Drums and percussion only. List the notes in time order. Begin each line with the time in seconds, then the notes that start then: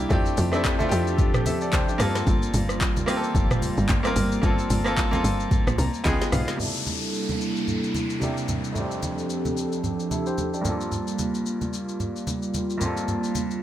0.10 kick, low conga, shaker
0.26 shaker
0.37 open hi-hat, high conga, shaker
0.53 cross-stick, shaker
0.65 kick, clap, shaker
0.80 high conga, shaker
0.92 open hi-hat, shaker
1.07 shaker
1.18 kick, low conga, shaker
1.34 cross-stick, mid tom, shaker
1.46 open hi-hat, high conga, shaker
1.61 shaker
1.73 kick, clap, high conga, shaker
1.89 shaker
2.00 cross-stick, open hi-hat, low conga, shaker
2.15 snare, shaker
2.27 kick, low conga, shaker
2.42 shaker
2.54 open hi-hat, high conga, shaker
2.69 cross-stick, shaker
2.81 kick, clap, shaker
2.97 high conga, shaker
3.08 cross-stick, open hi-hat, shaker
3.24 shaker
3.35 kick, low conga, shaker
3.51 cross-stick, mid tom, shaker
3.62 open hi-hat, high conga, shaker
3.77 shaker
3.89 kick, clap, high conga, shaker
4.05 cross-stick, shaker
4.16 open hi-hat, low conga, shaker
4.32 shaker
4.43 kick, low conga, shaker
4.59 shaker
4.70 open hi-hat, high conga, shaker
4.86 cross-stick, shaker
4.97 kick, clap, shaker
5.13 high conga, shaker
5.25 open hi-hat, shaker
5.40 shaker
5.51 kick, low conga, shaker
5.67 cross-stick, mid tom, shaker
5.78 open hi-hat, high conga, shaker
5.94 shaker
6.05 kick, clap, high conga, shaker
6.21 snare, shaker
6.32 cross-stick, open hi-hat, low conga, shaker
6.48 snare, shaker
6.60 low conga, shaker
6.75 shaker
6.87 high conga, shaker
7.02 shaker
7.14 shaker
7.29 high conga, shaker
7.41 shaker
7.56 shaker
7.68 low conga, shaker
7.84 shaker
7.95 high conga, shaker
8.10 shaker
8.22 high conga, shaker
8.37 shaker
8.48 high conga, low conga, shaker
8.64 shaker
8.76 low conga, shaker
8.91 shaker
9.03 high conga, shaker
9.18 shaker
9.30 shaker
9.45 high conga, shaker
9.57 shaker
9.72 shaker
9.84 low conga, shaker
10.00 shaker
10.11 high conga, shaker
10.26 shaker
10.38 high conga, shaker
10.54 shaker
10.65 high conga, low conga, shaker
10.81 shaker
10.92 low conga, shaker
11.07 shaker
11.19 high conga, shaker
11.35 shaker
11.46 shaker
11.61 high conga, shaker
11.73 shaker
11.89 shaker
12.00 low conga, shaker
12.16 shaker
12.27 high conga, shaker
12.42 shaker
12.54 high conga, shaker
12.70 shaker
12.81 high conga, low conga, shaker
12.97 shaker
13.08 low conga, shaker
13.24 shaker
13.35 high conga, shaker
13.51 shaker